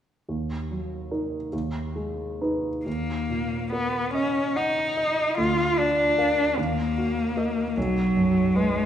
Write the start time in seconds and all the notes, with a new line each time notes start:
0.29 D#2
0.71 F#3
1.11 D#4 A#4
1.53 D#2
1.96 G#3
2.41 D#4 B4
2.86 D#2 A#3
3.30 A#2
3.72 B3 A#4
4.14 C#4 D#5
4.56 D#4 F#5
4.97 D#5
5.38 D2 F4
5.78 D4 F4
6.18 A#4 F5
6.57 D#2 A#3
6.98 F#4
7.37 A#4 D#5
7.77 B1 F#3
8.17 F#2
8.56 G#3 B4